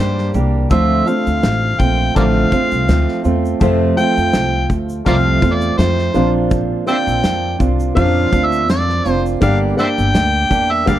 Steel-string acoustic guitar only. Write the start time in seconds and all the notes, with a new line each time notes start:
Already playing: G3
0.00 A#3 D4 G4
0.35 G3 A#3 D4 G4
0.71 D3 F3 A3 C4 F4
1.07 A3 C4 F4
1.80 A3 C4 F4
2.16 D3 F3 A3 C4 F4
2.52 A3 C4 F4
2.88 F3 A3 C4 F4
3.24 A3 C4 F4
3.60 F2 C3 F3 A3 C4 F4
3.97 F3 A3 C4 F4
5.06 F2 C3 F3 A3 C4 F4
5.42 A3 C4 F4
5.78 F3 A3 C4 F4
6.14 A#2 F3 C4 D4 F4
6.87 C4 D4 F4
7.59 C4 D4 F4
7.96 A#2 F3 C4 D4 F4
8.32 C4 D4 F4
8.69 F3 C4 D4 F4
9.05 C4 D4 F4
9.41 G2 D3 G3 A#3 D4 G4
9.77 G3 A#3 D4 G4
10.50 G3 A#3 D4 G4
10.87 G2 D3 G3 A#3 D4 G4